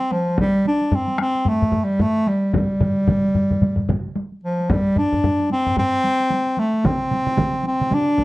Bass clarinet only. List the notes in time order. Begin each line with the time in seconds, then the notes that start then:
Already playing: C4
0.12 F3
0.40 G3
0.68 D4
0.95 C4
1.21 C4
1.48 A3
1.84 G3
2.02 A3
2.28 G3
2.55 G3
4.44 F3
4.71 G3
4.98 D4
5.52 C4
5.79 C4
6.59 A3
6.86 C4
7.67 C4
7.94 D4